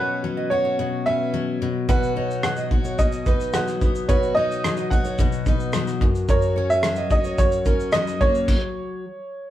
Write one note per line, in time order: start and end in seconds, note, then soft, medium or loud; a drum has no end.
0.00 0.78 B2 medium
0.00 0.23 F#3 medium
0.00 2.92 B3 soft
0.00 1.05 C#4 medium
0.00 0.51 F#4 medium
0.00 0.47 B4 medium
0.00 0.22 C#5 medium
0.24 1.33 F#3 medium
0.37 0.51 D#5 medium
0.50 1.89 F#4 medium
0.50 1.02 C#5 medium
0.65 0.78 C#5 medium
0.79 1.61 B2 medium
1.06 1.67 C#4 medium
1.06 1.33 B4 medium
1.06 1.57 E5 medium
1.34 2.44 F#3 medium
1.62 1.88 B2 medium
1.89 2.98 B2 medium
1.89 2.71 F#4 medium
1.89 2.15 B4 medium
1.89 2.40 F#5 medium
1.89 kick loud
1.89 shaker medium
2.03 shaker soft
2.16 3.27 D#4 medium
2.16 2.42 C#5 medium
2.31 shaker soft
2.43 3.54 F#3 medium
2.43 3.01 F#5 medium
2.43 cross-stick medium
2.43 shaker medium
2.57 2.71 D#5 medium
2.57 shaker soft
2.71 4.09 F#4 medium
2.71 kick medium
2.85 2.98 C#5 medium
2.85 shaker soft
2.99 4.08 B2 medium
2.99 3.55 D#5 medium
2.99 kick medium
2.99 shaker medium
3.12 shaker soft
3.26 4.35 D#4 medium
3.26 3.53 B4 medium
3.26 kick medium
3.26 shaker soft
3.40 shaker soft
3.53 4.64 F#3 medium
3.53 4.05 F#5 medium
3.53 cross-stick medium
3.53 shaker medium
3.68 cross-stick soft
3.68 shaker soft
3.81 6.01 B3 soft
3.81 kick medium
3.81 shaker soft
3.95 shaker soft
4.09 5.19 B2 medium
4.09 4.92 F#4 medium
4.09 4.35 B4 medium
4.09 4.34 C#5 medium
4.09 kick loud
4.09 shaker medium
4.23 shaker soft
4.35 5.46 D#4 medium
4.35 4.63 C#5 medium
4.35 4.92 D#5 medium
4.52 shaker soft
4.64 5.75 F#3 medium
4.64 cross-stick medium
4.64 shaker medium
4.77 4.91 D#5 medium
4.77 shaker soft
4.90 6.30 F#4 medium
4.90 5.42 F#5 medium
4.90 kick medium
4.90 shaker soft
5.05 5.18 C#5 medium
5.05 shaker soft
5.19 6.02 B2 medium
5.19 kick medium
5.19 shaker medium
5.32 shaker soft
5.46 6.08 D#4 medium
5.46 5.73 B4 medium
5.46 kick medium
5.46 shaker soft
5.60 shaker soft
5.73 6.84 F#3 medium
5.73 cross-stick medium
5.73 shaker medium
5.87 cross-stick soft
5.87 shaker soft
6.01 6.29 F#2 medium
6.01 kick medium
6.15 shaker soft
6.29 7.38 F#2 medium
6.29 7.11 F#4 medium
6.29 6.55 A#4 medium
6.29 6.68 C#5 medium
6.29 kick loud
6.29 shaker medium
6.42 shaker soft
6.56 7.65 C#4 medium
6.56 6.82 C#5 medium
6.70 7.08 E5 medium
6.70 shaker soft
6.83 7.94 F#3 medium
6.83 cross-stick loud
6.83 shaker medium
6.96 7.10 D#5 medium
6.96 shaker soft
7.10 9.04 F#4 medium
7.10 7.37 D#5 medium
7.10 kick medium
7.10 shaker soft
7.24 7.38 C#5 medium
7.24 shaker soft
7.38 8.54 F#2 medium
7.38 7.95 C#5 medium
7.38 kick medium
7.38 shaker medium
7.52 shaker soft
7.65 8.54 C#4 medium
7.65 7.92 A#4 medium
7.65 kick medium
7.65 shaker soft
7.80 shaker soft
7.92 9.04 F#3 medium
7.92 8.18 D#5 medium
7.92 cross-stick loud
7.92 shaker medium
8.07 cross-stick soft
8.07 shaker soft
8.21 8.54 A#3 medium
8.21 9.50 C#5 medium
8.21 kick medium
8.35 shaker soft
8.48 kick medium
8.48 crash medium